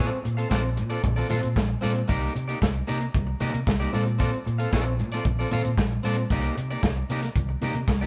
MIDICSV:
0, 0, Header, 1, 5, 480
1, 0, Start_track
1, 0, Tempo, 526778
1, 1902, Time_signature, 4, 2, 24, 8
1, 7348, End_track
2, 0, Start_track
2, 0, Title_t, "Clean electric guitar"
2, 0, Program_c, 0, 27
2, 0, Note_on_c, 0, 60, 81
2, 0, Note_on_c, 0, 65, 76
2, 0, Note_on_c, 0, 69, 92
2, 0, Note_on_c, 0, 74, 93
2, 94, Note_off_c, 0, 74, 0
2, 101, Note_off_c, 0, 69, 0
2, 104, Note_off_c, 0, 65, 0
2, 160, Note_off_c, 0, 60, 0
2, 337, Note_on_c, 0, 77, 50
2, 344, Note_on_c, 0, 69, 53
2, 351, Note_on_c, 0, 60, 48
2, 352, Note_on_c, 0, 65, 51
2, 442, Note_off_c, 0, 60, 0
2, 450, Note_off_c, 0, 65, 0
2, 453, Note_on_c, 0, 60, 75
2, 455, Note_off_c, 0, 69, 0
2, 461, Note_on_c, 0, 65, 73
2, 464, Note_off_c, 0, 77, 0
2, 466, Note_on_c, 0, 69, 84
2, 472, Note_on_c, 0, 74, 81
2, 569, Note_off_c, 0, 74, 0
2, 577, Note_off_c, 0, 69, 0
2, 584, Note_off_c, 0, 65, 0
2, 617, Note_off_c, 0, 60, 0
2, 817, Note_on_c, 0, 74, 57
2, 823, Note_on_c, 0, 69, 60
2, 832, Note_on_c, 0, 65, 50
2, 835, Note_on_c, 0, 60, 50
2, 929, Note_off_c, 0, 60, 0
2, 936, Note_off_c, 0, 65, 0
2, 941, Note_off_c, 0, 69, 0
2, 944, Note_off_c, 0, 74, 0
2, 1059, Note_on_c, 0, 74, 64
2, 1065, Note_on_c, 0, 69, 55
2, 1072, Note_on_c, 0, 65, 55
2, 1076, Note_on_c, 0, 60, 52
2, 1165, Note_off_c, 0, 60, 0
2, 1172, Note_off_c, 0, 65, 0
2, 1176, Note_on_c, 0, 60, 85
2, 1179, Note_off_c, 0, 69, 0
2, 1183, Note_on_c, 0, 65, 88
2, 1186, Note_off_c, 0, 74, 0
2, 1190, Note_on_c, 0, 69, 84
2, 1196, Note_on_c, 0, 77, 85
2, 1287, Note_off_c, 0, 77, 0
2, 1292, Note_off_c, 0, 69, 0
2, 1297, Note_off_c, 0, 65, 0
2, 1339, Note_off_c, 0, 60, 0
2, 1650, Note_on_c, 0, 60, 80
2, 1659, Note_on_c, 0, 65, 85
2, 1664, Note_on_c, 0, 69, 82
2, 1670, Note_on_c, 0, 74, 91
2, 1764, Note_off_c, 0, 74, 0
2, 1770, Note_off_c, 0, 69, 0
2, 1777, Note_off_c, 0, 65, 0
2, 1816, Note_off_c, 0, 60, 0
2, 1892, Note_on_c, 0, 58, 69
2, 1898, Note_on_c, 0, 63, 82
2, 1906, Note_on_c, 0, 67, 84
2, 1913, Note_on_c, 0, 74, 88
2, 2118, Note_off_c, 0, 58, 0
2, 2121, Note_off_c, 0, 63, 0
2, 2125, Note_off_c, 0, 67, 0
2, 2128, Note_off_c, 0, 74, 0
2, 2257, Note_on_c, 0, 74, 57
2, 2265, Note_on_c, 0, 67, 57
2, 2275, Note_on_c, 0, 63, 55
2, 2276, Note_on_c, 0, 58, 42
2, 2361, Note_off_c, 0, 58, 0
2, 2367, Note_off_c, 0, 63, 0
2, 2371, Note_off_c, 0, 67, 0
2, 2376, Note_off_c, 0, 74, 0
2, 2618, Note_on_c, 0, 58, 77
2, 2623, Note_on_c, 0, 63, 78
2, 2625, Note_on_c, 0, 67, 84
2, 2632, Note_on_c, 0, 74, 78
2, 2727, Note_off_c, 0, 74, 0
2, 2737, Note_off_c, 0, 67, 0
2, 2742, Note_off_c, 0, 63, 0
2, 2781, Note_off_c, 0, 58, 0
2, 3102, Note_on_c, 0, 58, 81
2, 3104, Note_on_c, 0, 63, 81
2, 3112, Note_on_c, 0, 67, 90
2, 3115, Note_on_c, 0, 74, 81
2, 3218, Note_off_c, 0, 74, 0
2, 3226, Note_off_c, 0, 67, 0
2, 3233, Note_off_c, 0, 63, 0
2, 3262, Note_off_c, 0, 58, 0
2, 3461, Note_on_c, 0, 74, 78
2, 3463, Note_on_c, 0, 67, 76
2, 3473, Note_on_c, 0, 63, 59
2, 3477, Note_on_c, 0, 58, 62
2, 3573, Note_off_c, 0, 58, 0
2, 3576, Note_on_c, 0, 60, 56
2, 3582, Note_off_c, 0, 63, 0
2, 3583, Note_off_c, 0, 67, 0
2, 3584, Note_off_c, 0, 74, 0
2, 3586, Note_on_c, 0, 65, 59
2, 3587, Note_on_c, 0, 69, 67
2, 3595, Note_on_c, 0, 74, 66
2, 3690, Note_off_c, 0, 74, 0
2, 3700, Note_off_c, 0, 69, 0
2, 3703, Note_off_c, 0, 65, 0
2, 3705, Note_off_c, 0, 60, 0
2, 3814, Note_on_c, 0, 60, 77
2, 3822, Note_on_c, 0, 65, 73
2, 3827, Note_on_c, 0, 69, 78
2, 3836, Note_on_c, 0, 74, 81
2, 3935, Note_off_c, 0, 74, 0
2, 3943, Note_off_c, 0, 69, 0
2, 3947, Note_off_c, 0, 65, 0
2, 3979, Note_off_c, 0, 60, 0
2, 4177, Note_on_c, 0, 77, 57
2, 4185, Note_on_c, 0, 69, 54
2, 4190, Note_on_c, 0, 65, 53
2, 4198, Note_on_c, 0, 60, 48
2, 4288, Note_off_c, 0, 60, 0
2, 4299, Note_off_c, 0, 65, 0
2, 4299, Note_on_c, 0, 60, 73
2, 4304, Note_off_c, 0, 69, 0
2, 4305, Note_off_c, 0, 77, 0
2, 4310, Note_on_c, 0, 65, 90
2, 4315, Note_on_c, 0, 69, 88
2, 4319, Note_on_c, 0, 74, 83
2, 4421, Note_off_c, 0, 74, 0
2, 4424, Note_off_c, 0, 69, 0
2, 4430, Note_off_c, 0, 65, 0
2, 4484, Note_off_c, 0, 60, 0
2, 4667, Note_on_c, 0, 74, 64
2, 4676, Note_on_c, 0, 69, 56
2, 4681, Note_on_c, 0, 65, 57
2, 4688, Note_on_c, 0, 60, 56
2, 4782, Note_off_c, 0, 60, 0
2, 4784, Note_off_c, 0, 65, 0
2, 4791, Note_off_c, 0, 69, 0
2, 4791, Note_off_c, 0, 74, 0
2, 4910, Note_on_c, 0, 74, 66
2, 4916, Note_on_c, 0, 69, 52
2, 4922, Note_on_c, 0, 65, 54
2, 4926, Note_on_c, 0, 60, 58
2, 5012, Note_off_c, 0, 60, 0
2, 5020, Note_off_c, 0, 65, 0
2, 5022, Note_on_c, 0, 60, 74
2, 5026, Note_off_c, 0, 69, 0
2, 5031, Note_on_c, 0, 65, 74
2, 5032, Note_off_c, 0, 74, 0
2, 5037, Note_on_c, 0, 69, 74
2, 5040, Note_on_c, 0, 77, 85
2, 5144, Note_off_c, 0, 77, 0
2, 5145, Note_off_c, 0, 69, 0
2, 5150, Note_off_c, 0, 65, 0
2, 5183, Note_off_c, 0, 60, 0
2, 5497, Note_on_c, 0, 60, 79
2, 5508, Note_on_c, 0, 65, 73
2, 5512, Note_on_c, 0, 69, 92
2, 5517, Note_on_c, 0, 74, 94
2, 5624, Note_off_c, 0, 74, 0
2, 5628, Note_off_c, 0, 69, 0
2, 5635, Note_off_c, 0, 65, 0
2, 5660, Note_off_c, 0, 60, 0
2, 5751, Note_on_c, 0, 58, 93
2, 5752, Note_on_c, 0, 63, 87
2, 5761, Note_on_c, 0, 67, 90
2, 5765, Note_on_c, 0, 74, 84
2, 5968, Note_off_c, 0, 58, 0
2, 5968, Note_off_c, 0, 63, 0
2, 5973, Note_off_c, 0, 67, 0
2, 5975, Note_off_c, 0, 74, 0
2, 6109, Note_on_c, 0, 74, 62
2, 6114, Note_on_c, 0, 67, 55
2, 6119, Note_on_c, 0, 63, 45
2, 6125, Note_on_c, 0, 58, 49
2, 6216, Note_off_c, 0, 58, 0
2, 6220, Note_off_c, 0, 67, 0
2, 6222, Note_off_c, 0, 63, 0
2, 6228, Note_off_c, 0, 74, 0
2, 6471, Note_on_c, 0, 58, 72
2, 6480, Note_on_c, 0, 63, 83
2, 6483, Note_on_c, 0, 67, 87
2, 6485, Note_on_c, 0, 74, 76
2, 6573, Note_off_c, 0, 74, 0
2, 6582, Note_off_c, 0, 67, 0
2, 6589, Note_off_c, 0, 63, 0
2, 6627, Note_off_c, 0, 58, 0
2, 6945, Note_on_c, 0, 58, 67
2, 6952, Note_on_c, 0, 63, 80
2, 6958, Note_on_c, 0, 67, 79
2, 6964, Note_on_c, 0, 74, 81
2, 7059, Note_off_c, 0, 74, 0
2, 7066, Note_off_c, 0, 67, 0
2, 7071, Note_off_c, 0, 63, 0
2, 7104, Note_off_c, 0, 58, 0
2, 7301, Note_on_c, 0, 74, 81
2, 7309, Note_on_c, 0, 67, 91
2, 7312, Note_on_c, 0, 63, 76
2, 7319, Note_on_c, 0, 58, 68
2, 7348, Note_off_c, 0, 58, 0
2, 7348, Note_off_c, 0, 63, 0
2, 7348, Note_off_c, 0, 67, 0
2, 7348, Note_off_c, 0, 74, 0
2, 7348, End_track
3, 0, Start_track
3, 0, Title_t, "Fingered electric bass"
3, 0, Program_c, 1, 33
3, 229, Note_on_c, 1, 46, 94
3, 392, Note_off_c, 1, 46, 0
3, 465, Note_on_c, 1, 34, 91
3, 713, Note_on_c, 1, 46, 91
3, 727, Note_off_c, 1, 34, 0
3, 875, Note_off_c, 1, 46, 0
3, 945, Note_on_c, 1, 34, 105
3, 1110, Note_off_c, 1, 34, 0
3, 1190, Note_on_c, 1, 46, 93
3, 1270, Note_off_c, 1, 46, 0
3, 1314, Note_on_c, 1, 46, 91
3, 1393, Note_off_c, 1, 46, 0
3, 1421, Note_on_c, 1, 34, 101
3, 1587, Note_off_c, 1, 34, 0
3, 1673, Note_on_c, 1, 46, 107
3, 1835, Note_off_c, 1, 46, 0
3, 1906, Note_on_c, 1, 36, 82
3, 2070, Note_off_c, 1, 36, 0
3, 2145, Note_on_c, 1, 48, 90
3, 2310, Note_off_c, 1, 48, 0
3, 2388, Note_on_c, 1, 36, 91
3, 2552, Note_off_c, 1, 36, 0
3, 2635, Note_on_c, 1, 48, 89
3, 2796, Note_off_c, 1, 48, 0
3, 2868, Note_on_c, 1, 36, 106
3, 3032, Note_off_c, 1, 36, 0
3, 3110, Note_on_c, 1, 48, 92
3, 3191, Note_off_c, 1, 48, 0
3, 3228, Note_on_c, 1, 48, 91
3, 3309, Note_off_c, 1, 48, 0
3, 3343, Note_on_c, 1, 36, 101
3, 3508, Note_off_c, 1, 36, 0
3, 3589, Note_on_c, 1, 46, 101
3, 3919, Note_off_c, 1, 46, 0
3, 4068, Note_on_c, 1, 46, 97
3, 4232, Note_off_c, 1, 46, 0
3, 4311, Note_on_c, 1, 34, 94
3, 4554, Note_on_c, 1, 46, 91
3, 4568, Note_off_c, 1, 34, 0
3, 4716, Note_off_c, 1, 46, 0
3, 4787, Note_on_c, 1, 34, 103
3, 4951, Note_off_c, 1, 34, 0
3, 5031, Note_on_c, 1, 46, 91
3, 5111, Note_off_c, 1, 46, 0
3, 5150, Note_on_c, 1, 46, 86
3, 5230, Note_off_c, 1, 46, 0
3, 5265, Note_on_c, 1, 34, 101
3, 5430, Note_off_c, 1, 34, 0
3, 5511, Note_on_c, 1, 46, 103
3, 5674, Note_off_c, 1, 46, 0
3, 5743, Note_on_c, 1, 36, 95
3, 5909, Note_off_c, 1, 36, 0
3, 5989, Note_on_c, 1, 48, 102
3, 6153, Note_off_c, 1, 48, 0
3, 6224, Note_on_c, 1, 36, 86
3, 6389, Note_off_c, 1, 36, 0
3, 6463, Note_on_c, 1, 48, 92
3, 6629, Note_off_c, 1, 48, 0
3, 6706, Note_on_c, 1, 36, 111
3, 6870, Note_off_c, 1, 36, 0
3, 6937, Note_on_c, 1, 48, 102
3, 7022, Note_off_c, 1, 48, 0
3, 7057, Note_on_c, 1, 48, 90
3, 7142, Note_off_c, 1, 48, 0
3, 7180, Note_on_c, 1, 36, 102
3, 7347, Note_off_c, 1, 36, 0
3, 7348, End_track
4, 0, Start_track
4, 0, Title_t, "Muted clean electric guitar strokes"
4, 105, Note_on_c, 9, 29, 39
4, 196, Note_off_c, 9, 29, 0
4, 217, Note_on_c, 9, 29, 32
4, 308, Note_off_c, 9, 29, 0
4, 580, Note_on_c, 9, 29, 43
4, 671, Note_off_c, 9, 29, 0
4, 699, Note_on_c, 9, 29, 39
4, 790, Note_off_c, 9, 29, 0
4, 940, Note_on_c, 9, 29, 46
4, 1031, Note_off_c, 9, 29, 0
4, 1290, Note_on_c, 9, 29, 37
4, 1381, Note_off_c, 9, 29, 0
4, 1537, Note_on_c, 9, 29, 50
4, 1628, Note_off_c, 9, 29, 0
4, 1774, Note_on_c, 9, 29, 41
4, 1866, Note_off_c, 9, 29, 0
4, 2139, Note_on_c, 9, 29, 38
4, 2230, Note_off_c, 9, 29, 0
4, 2372, Note_on_c, 9, 29, 36
4, 2463, Note_off_c, 9, 29, 0
4, 2494, Note_on_c, 9, 29, 37
4, 2585, Note_off_c, 9, 29, 0
4, 2738, Note_on_c, 9, 29, 39
4, 2829, Note_off_c, 9, 29, 0
4, 2978, Note_on_c, 9, 29, 43
4, 3069, Note_off_c, 9, 29, 0
4, 3229, Note_on_c, 9, 29, 43
4, 3320, Note_off_c, 9, 29, 0
4, 3343, Note_on_c, 9, 29, 40
4, 3434, Note_off_c, 9, 29, 0
4, 3701, Note_on_c, 9, 29, 43
4, 3792, Note_off_c, 9, 29, 0
4, 3946, Note_on_c, 9, 29, 44
4, 4038, Note_off_c, 9, 29, 0
4, 4061, Note_on_c, 9, 29, 34
4, 4152, Note_off_c, 9, 29, 0
4, 4432, Note_on_c, 9, 29, 47
4, 4523, Note_off_c, 9, 29, 0
4, 4551, Note_on_c, 9, 29, 42
4, 4642, Note_off_c, 9, 29, 0
4, 4793, Note_on_c, 9, 29, 37
4, 4884, Note_off_c, 9, 29, 0
4, 5147, Note_on_c, 9, 29, 38
4, 5238, Note_off_c, 9, 29, 0
4, 5387, Note_on_c, 9, 29, 43
4, 5478, Note_off_c, 9, 29, 0
4, 5635, Note_on_c, 9, 29, 47
4, 5726, Note_off_c, 9, 29, 0
4, 6227, Note_on_c, 9, 29, 42
4, 6318, Note_off_c, 9, 29, 0
4, 6346, Note_on_c, 9, 29, 48
4, 6437, Note_off_c, 9, 29, 0
4, 6584, Note_on_c, 9, 29, 38
4, 6675, Note_off_c, 9, 29, 0
4, 6824, Note_on_c, 9, 29, 46
4, 6915, Note_off_c, 9, 29, 0
4, 7070, Note_on_c, 9, 29, 43
4, 7161, Note_off_c, 9, 29, 0
4, 7178, Note_on_c, 9, 29, 40
4, 7269, Note_off_c, 9, 29, 0
4, 7348, End_track
5, 0, Start_track
5, 0, Title_t, "Drums"
5, 229, Note_on_c, 9, 42, 61
5, 320, Note_off_c, 9, 42, 0
5, 350, Note_on_c, 9, 42, 53
5, 441, Note_off_c, 9, 42, 0
5, 465, Note_on_c, 9, 36, 88
5, 473, Note_on_c, 9, 63, 77
5, 474, Note_on_c, 9, 38, 98
5, 474, Note_on_c, 9, 39, 87
5, 556, Note_off_c, 9, 36, 0
5, 564, Note_off_c, 9, 63, 0
5, 565, Note_off_c, 9, 38, 0
5, 565, Note_off_c, 9, 39, 0
5, 585, Note_on_c, 9, 42, 33
5, 677, Note_off_c, 9, 42, 0
5, 705, Note_on_c, 9, 42, 57
5, 796, Note_off_c, 9, 42, 0
5, 820, Note_on_c, 9, 42, 56
5, 911, Note_off_c, 9, 42, 0
5, 945, Note_on_c, 9, 42, 72
5, 946, Note_on_c, 9, 36, 108
5, 955, Note_on_c, 9, 62, 62
5, 955, Note_on_c, 9, 64, 85
5, 1036, Note_off_c, 9, 42, 0
5, 1037, Note_off_c, 9, 36, 0
5, 1046, Note_off_c, 9, 62, 0
5, 1046, Note_off_c, 9, 64, 0
5, 1181, Note_on_c, 9, 42, 56
5, 1190, Note_on_c, 9, 62, 50
5, 1190, Note_on_c, 9, 64, 63
5, 1272, Note_off_c, 9, 42, 0
5, 1281, Note_off_c, 9, 62, 0
5, 1281, Note_off_c, 9, 64, 0
5, 1304, Note_on_c, 9, 42, 55
5, 1395, Note_off_c, 9, 42, 0
5, 1423, Note_on_c, 9, 36, 124
5, 1429, Note_on_c, 9, 63, 66
5, 1435, Note_on_c, 9, 38, 123
5, 1435, Note_on_c, 9, 39, 85
5, 1514, Note_off_c, 9, 36, 0
5, 1520, Note_off_c, 9, 63, 0
5, 1526, Note_off_c, 9, 38, 0
5, 1526, Note_off_c, 9, 39, 0
5, 1665, Note_on_c, 9, 63, 80
5, 1666, Note_on_c, 9, 46, 61
5, 1757, Note_off_c, 9, 46, 0
5, 1757, Note_off_c, 9, 63, 0
5, 1782, Note_on_c, 9, 42, 43
5, 1873, Note_off_c, 9, 42, 0
5, 1904, Note_on_c, 9, 42, 82
5, 1906, Note_on_c, 9, 36, 115
5, 1995, Note_off_c, 9, 42, 0
5, 1997, Note_off_c, 9, 36, 0
5, 2025, Note_on_c, 9, 42, 33
5, 2116, Note_off_c, 9, 42, 0
5, 2152, Note_on_c, 9, 42, 62
5, 2243, Note_off_c, 9, 42, 0
5, 2269, Note_on_c, 9, 42, 48
5, 2360, Note_off_c, 9, 42, 0
5, 2386, Note_on_c, 9, 36, 90
5, 2393, Note_on_c, 9, 63, 73
5, 2397, Note_on_c, 9, 38, 105
5, 2397, Note_on_c, 9, 39, 77
5, 2477, Note_off_c, 9, 36, 0
5, 2484, Note_off_c, 9, 63, 0
5, 2488, Note_off_c, 9, 38, 0
5, 2488, Note_off_c, 9, 39, 0
5, 2630, Note_on_c, 9, 42, 56
5, 2721, Note_off_c, 9, 42, 0
5, 2740, Note_on_c, 9, 42, 59
5, 2831, Note_off_c, 9, 42, 0
5, 2865, Note_on_c, 9, 36, 100
5, 2867, Note_on_c, 9, 42, 68
5, 2871, Note_on_c, 9, 62, 59
5, 2871, Note_on_c, 9, 64, 83
5, 2957, Note_off_c, 9, 36, 0
5, 2958, Note_off_c, 9, 42, 0
5, 2962, Note_off_c, 9, 62, 0
5, 2962, Note_off_c, 9, 64, 0
5, 3104, Note_on_c, 9, 62, 49
5, 3104, Note_on_c, 9, 64, 66
5, 3105, Note_on_c, 9, 42, 57
5, 3195, Note_off_c, 9, 62, 0
5, 3195, Note_off_c, 9, 64, 0
5, 3197, Note_off_c, 9, 42, 0
5, 3228, Note_on_c, 9, 42, 51
5, 3320, Note_off_c, 9, 42, 0
5, 3345, Note_on_c, 9, 36, 121
5, 3348, Note_on_c, 9, 63, 77
5, 3359, Note_on_c, 9, 38, 112
5, 3359, Note_on_c, 9, 39, 92
5, 3436, Note_off_c, 9, 36, 0
5, 3439, Note_off_c, 9, 63, 0
5, 3450, Note_off_c, 9, 38, 0
5, 3450, Note_off_c, 9, 39, 0
5, 3582, Note_on_c, 9, 63, 83
5, 3590, Note_on_c, 9, 46, 60
5, 3673, Note_off_c, 9, 63, 0
5, 3681, Note_off_c, 9, 46, 0
5, 3709, Note_on_c, 9, 42, 44
5, 3800, Note_off_c, 9, 42, 0
5, 3826, Note_on_c, 9, 36, 109
5, 3826, Note_on_c, 9, 42, 72
5, 3917, Note_off_c, 9, 42, 0
5, 3918, Note_off_c, 9, 36, 0
5, 3949, Note_on_c, 9, 42, 32
5, 4040, Note_off_c, 9, 42, 0
5, 4075, Note_on_c, 9, 42, 54
5, 4166, Note_off_c, 9, 42, 0
5, 4189, Note_on_c, 9, 42, 50
5, 4280, Note_off_c, 9, 42, 0
5, 4307, Note_on_c, 9, 36, 93
5, 4308, Note_on_c, 9, 63, 76
5, 4319, Note_on_c, 9, 38, 99
5, 4319, Note_on_c, 9, 39, 87
5, 4398, Note_off_c, 9, 36, 0
5, 4400, Note_off_c, 9, 63, 0
5, 4410, Note_off_c, 9, 38, 0
5, 4410, Note_off_c, 9, 39, 0
5, 4549, Note_on_c, 9, 62, 34
5, 4553, Note_on_c, 9, 42, 56
5, 4640, Note_off_c, 9, 62, 0
5, 4644, Note_off_c, 9, 42, 0
5, 4662, Note_on_c, 9, 42, 64
5, 4675, Note_on_c, 9, 38, 35
5, 4753, Note_off_c, 9, 42, 0
5, 4766, Note_off_c, 9, 38, 0
5, 4786, Note_on_c, 9, 36, 105
5, 4786, Note_on_c, 9, 42, 72
5, 4791, Note_on_c, 9, 62, 57
5, 4791, Note_on_c, 9, 64, 79
5, 4877, Note_off_c, 9, 36, 0
5, 4877, Note_off_c, 9, 42, 0
5, 4882, Note_off_c, 9, 62, 0
5, 4882, Note_off_c, 9, 64, 0
5, 5024, Note_on_c, 9, 42, 60
5, 5024, Note_on_c, 9, 62, 49
5, 5024, Note_on_c, 9, 64, 69
5, 5115, Note_off_c, 9, 62, 0
5, 5115, Note_off_c, 9, 64, 0
5, 5116, Note_off_c, 9, 42, 0
5, 5146, Note_on_c, 9, 42, 58
5, 5237, Note_off_c, 9, 42, 0
5, 5262, Note_on_c, 9, 36, 120
5, 5271, Note_on_c, 9, 63, 69
5, 5274, Note_on_c, 9, 38, 113
5, 5275, Note_on_c, 9, 39, 87
5, 5353, Note_off_c, 9, 36, 0
5, 5362, Note_off_c, 9, 63, 0
5, 5366, Note_off_c, 9, 38, 0
5, 5366, Note_off_c, 9, 39, 0
5, 5388, Note_on_c, 9, 42, 33
5, 5479, Note_off_c, 9, 42, 0
5, 5504, Note_on_c, 9, 63, 81
5, 5505, Note_on_c, 9, 46, 64
5, 5595, Note_off_c, 9, 63, 0
5, 5596, Note_off_c, 9, 46, 0
5, 5622, Note_on_c, 9, 42, 37
5, 5713, Note_off_c, 9, 42, 0
5, 5743, Note_on_c, 9, 42, 77
5, 5744, Note_on_c, 9, 36, 115
5, 5834, Note_off_c, 9, 42, 0
5, 5835, Note_off_c, 9, 36, 0
5, 5992, Note_on_c, 9, 42, 67
5, 6083, Note_off_c, 9, 42, 0
5, 6109, Note_on_c, 9, 42, 51
5, 6200, Note_off_c, 9, 42, 0
5, 6223, Note_on_c, 9, 36, 90
5, 6226, Note_on_c, 9, 63, 73
5, 6233, Note_on_c, 9, 38, 111
5, 6234, Note_on_c, 9, 39, 77
5, 6314, Note_off_c, 9, 36, 0
5, 6317, Note_off_c, 9, 63, 0
5, 6324, Note_off_c, 9, 38, 0
5, 6325, Note_off_c, 9, 39, 0
5, 6348, Note_on_c, 9, 42, 32
5, 6439, Note_off_c, 9, 42, 0
5, 6466, Note_on_c, 9, 62, 31
5, 6470, Note_on_c, 9, 42, 59
5, 6557, Note_off_c, 9, 62, 0
5, 6561, Note_off_c, 9, 42, 0
5, 6583, Note_on_c, 9, 42, 60
5, 6596, Note_on_c, 9, 38, 32
5, 6675, Note_off_c, 9, 42, 0
5, 6688, Note_off_c, 9, 38, 0
5, 6703, Note_on_c, 9, 36, 104
5, 6705, Note_on_c, 9, 42, 77
5, 6709, Note_on_c, 9, 62, 64
5, 6709, Note_on_c, 9, 64, 83
5, 6794, Note_off_c, 9, 36, 0
5, 6796, Note_off_c, 9, 42, 0
5, 6800, Note_off_c, 9, 62, 0
5, 6800, Note_off_c, 9, 64, 0
5, 6941, Note_on_c, 9, 62, 53
5, 6941, Note_on_c, 9, 64, 68
5, 6942, Note_on_c, 9, 42, 55
5, 7032, Note_off_c, 9, 62, 0
5, 7032, Note_off_c, 9, 64, 0
5, 7033, Note_off_c, 9, 42, 0
5, 7061, Note_on_c, 9, 42, 58
5, 7152, Note_off_c, 9, 42, 0
5, 7178, Note_on_c, 9, 36, 127
5, 7183, Note_on_c, 9, 63, 79
5, 7189, Note_on_c, 9, 38, 117
5, 7189, Note_on_c, 9, 39, 89
5, 7269, Note_off_c, 9, 36, 0
5, 7274, Note_off_c, 9, 63, 0
5, 7280, Note_off_c, 9, 38, 0
5, 7280, Note_off_c, 9, 39, 0
5, 7348, End_track
0, 0, End_of_file